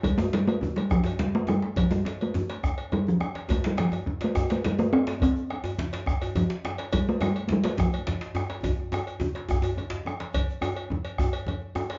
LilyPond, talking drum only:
\new Staff \with { instrumentName = "Talking drum" } { \clef bass \time 12/8 \key f \major \tempo 4. = 140 g8 a8 g8 a4 g8 f4 g8 a8 g4 | f8 g4 a4. r4 g8 f4 r8 | a8 g8 f4. a4 a8 g8 a8 c'4 | c'1 f2 |
g8 a8 g8.~ g32 a32 g8 a8 f2.~ | f1~ f4 r4 | r1. | }